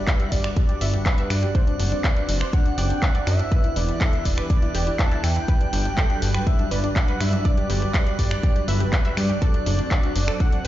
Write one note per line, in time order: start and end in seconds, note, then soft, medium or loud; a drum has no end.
0.00 1.51 G3 medium
0.00 5.44 D4 medium
0.00 3.48 F#4 medium
0.00 1.51 B4 medium
0.00 10.67 F#6 medium
0.07 0.15 B4 loud
0.07 0.31 E5 loud
0.07 kick loud
0.07 clap loud
0.07 closed hi-hat medium
0.20 0.27 G4 medium
0.20 closed hi-hat soft
0.32 0.47 G1 loud
0.32 0.39 G4 medium
0.32 0.55 D5 medium
0.32 kick medium
0.32 open hi-hat loud
0.44 0.52 D5 loud
0.44 finger snap medium
0.57 0.64 G4 medium
0.57 1.02 D5 loud
0.57 kick loud
0.57 closed hi-hat medium
0.69 0.76 G4 medium
0.69 closed hi-hat soft
0.81 0.96 G1 loud
0.81 0.89 E5 medium
0.81 open hi-hat loud
0.93 1.01 G4 medium
0.93 closed hi-hat soft
1.06 1.13 G4 medium
1.06 1.32 B4 loud
1.06 kick loud
1.06 clap loud
1.06 closed hi-hat medium
1.18 1.25 E5 medium
1.18 closed hi-hat soft
1.30 1.46 G2 medium
1.30 1.38 G4 medium
1.30 2.55 D5 loud
1.30 finger snap medium
1.30 open hi-hat loud
1.43 1.50 G4 medium
1.43 closed hi-hat soft
1.55 3.50 C4 medium
1.55 1.62 C5 loud
1.55 kick loud
1.55 closed hi-hat medium
1.67 1.75 D4 medium
1.67 closed hi-hat soft
1.79 1.95 F#1 loud
1.79 1.87 D4 medium
1.79 open hi-hat loud
1.92 1.99 D4 medium
1.92 closed hi-hat soft
2.04 2.12 B4 medium
2.04 kick loud
2.04 clap loud
2.04 closed hi-hat medium
2.16 2.24 D4 medium
2.16 closed hi-hat soft
2.29 2.44 F#1 loud
2.29 2.36 D4 medium
2.29 open hi-hat loud
2.41 2.48 C5 medium
2.41 finger snap medium
2.53 2.61 D4 medium
2.53 2.79 F#5 loud
2.53 kick loud
2.53 closed hi-hat medium
2.66 2.73 D4 medium
2.66 closed hi-hat soft
2.78 2.93 F#1 loud
2.78 2.85 D5 loud
2.78 3.04 G5 loud
2.78 open hi-hat loud
2.90 2.98 D4 medium
2.90 closed hi-hat soft
3.02 3.10 D4 medium
3.02 3.26 F#5 loud
3.02 kick loud
3.02 clap loud
3.02 closed hi-hat medium
3.15 3.22 D5 medium
3.15 closed hi-hat soft
3.27 3.42 F#2 medium
3.27 3.35 D4 medium
3.27 3.78 E5 loud
3.27 finger snap medium
3.27 open hi-hat loud
3.39 3.47 D4 medium
3.39 closed hi-hat soft
3.52 5.46 E3 medium
3.52 5.46 B3 medium
3.52 5.46 G4 medium
3.52 3.59 B4 loud
3.52 kick loud
3.52 closed hi-hat medium
3.64 3.71 E4 medium
3.64 closed hi-hat soft
3.76 3.91 E1 loud
3.76 3.84 E4 medium
3.76 4.02 D5 loud
3.76 open hi-hat loud
3.89 3.96 E4 medium
3.89 closed hi-hat soft
4.01 4.08 A4 medium
4.01 4.27 E5 loud
4.01 kick loud
4.01 clap loud
4.01 closed hi-hat medium
4.13 4.21 E4 medium
4.13 closed hi-hat soft
4.25 4.41 E1 loud
4.25 4.33 E4 medium
4.25 4.49 D5 loud
4.25 kick medium
4.25 open hi-hat loud
4.38 4.45 B4 medium
4.38 finger snap medium
4.50 4.57 E4 medium
4.50 5.01 D5 loud
4.50 kick loud
4.50 closed hi-hat medium
4.62 4.70 E4 medium
4.62 closed hi-hat soft
4.75 4.90 E1 loud
4.75 4.82 G4 medium
4.75 open hi-hat loud
4.87 4.94 E4 medium
4.87 closed hi-hat soft
4.99 5.07 E4 medium
4.99 5.25 A5 loud
4.99 kick loud
4.99 clap loud
4.99 closed hi-hat medium
5.12 5.19 E4 loud
5.12 closed hi-hat soft
5.24 5.39 E2 medium
5.24 5.31 E4 medium
5.24 6.48 G5 loud
5.24 finger snap medium
5.24 open hi-hat loud
5.36 5.43 E4 medium
5.36 closed hi-hat soft
5.48 10.67 F#3 medium
5.48 9.38 G3 medium
5.48 10.67 D4 medium
5.48 9.38 B4 medium
5.48 5.56 B4 loud
5.48 kick loud
5.48 closed hi-hat medium
5.61 5.68 D4 medium
5.61 closed hi-hat soft
5.73 5.88 G1 loud
5.73 5.80 D4 medium
5.73 open hi-hat loud
5.85 5.93 D4 medium
5.85 closed hi-hat soft
5.97 6.05 A4 loud
5.97 kick loud
5.97 clap loud
5.97 closed hi-hat medium
6.10 6.17 D4 medium
6.10 closed hi-hat soft
6.22 6.37 G1 loud
6.22 6.30 D4 medium
6.22 open hi-hat loud
6.34 6.42 B4 medium
6.34 finger snap medium
6.47 6.54 D4 medium
6.47 6.73 E5 loud
6.47 kick loud
6.47 closed hi-hat medium
6.59 6.66 D4 medium
6.59 closed hi-hat soft
6.71 6.87 G1 loud
6.71 6.79 B4 medium
6.71 6.97 D5 loud
6.71 open hi-hat loud
6.84 6.91 D4 medium
6.84 closed hi-hat soft
6.96 7.03 D4 medium
6.96 7.22 F#5 loud
6.96 kick loud
6.96 clap loud
6.96 closed hi-hat medium
7.08 7.16 B4 medium
7.08 closed hi-hat soft
7.20 7.36 G2 medium
7.20 7.28 D4 medium
7.20 7.47 E5 loud
7.20 finger snap medium
7.20 open hi-hat loud
7.33 7.40 D4 medium
7.33 closed hi-hat soft
7.45 8.18 D5 loud
7.45 7.52 D5 loud
7.45 kick loud
7.45 closed hi-hat medium
7.57 7.65 G4 medium
7.57 closed hi-hat soft
7.70 7.85 G1 loud
7.70 7.77 G4 medium
7.70 open hi-hat loud
7.82 7.89 G4 medium
7.82 closed hi-hat soft
7.94 8.02 B4 loud
7.94 kick loud
7.94 clap loud
7.94 closed hi-hat medium
8.07 8.14 G4 medium
8.07 closed hi-hat soft
8.19 8.34 G1 loud
8.19 8.26 G4 medium
8.19 8.69 D5 loud
8.19 kick medium
8.19 open hi-hat loud
8.31 8.39 D5 medium
8.31 finger snap medium
8.43 8.51 G4 medium
8.43 kick loud
8.43 closed hi-hat medium
8.56 8.63 G4 medium
8.56 closed hi-hat soft
8.68 8.83 G1 loud
8.68 8.92 B4 loud
8.68 8.75 E5 medium
8.68 open hi-hat loud
8.80 8.88 G4 medium
8.80 closed hi-hat soft
8.93 9.00 G4 medium
8.93 9.19 B4 loud
8.93 kick loud
8.93 clap loud
8.93 closed hi-hat medium
9.05 9.12 E5 medium
9.05 closed hi-hat soft
9.17 9.32 G2 medium
9.17 9.25 G4 medium
9.17 10.42 D5 loud
9.17 finger snap medium
9.17 open hi-hat loud
9.30 9.37 G4 medium
9.42 10.67 C4 medium
9.42 9.49 A4 loud
9.42 kick loud
9.42 closed hi-hat medium
9.54 9.62 D4 medium
9.54 closed hi-hat soft
9.66 9.82 F#1 loud
9.66 9.74 D4 medium
9.66 open hi-hat loud
9.79 9.86 D4 medium
9.79 closed hi-hat soft
9.91 9.98 F#4 loud
9.91 kick loud
9.91 clap loud
9.91 closed hi-hat medium
10.03 10.11 D4 medium
10.03 closed hi-hat soft
10.15 10.31 F#1 loud
10.15 10.23 D4 medium
10.15 open hi-hat loud
10.28 10.35 A4 medium
10.28 finger snap medium
10.40 10.48 D4 medium
10.40 10.66 F#5 loud
10.40 kick loud
10.40 closed hi-hat medium
10.52 10.60 D4 medium
10.52 closed hi-hat soft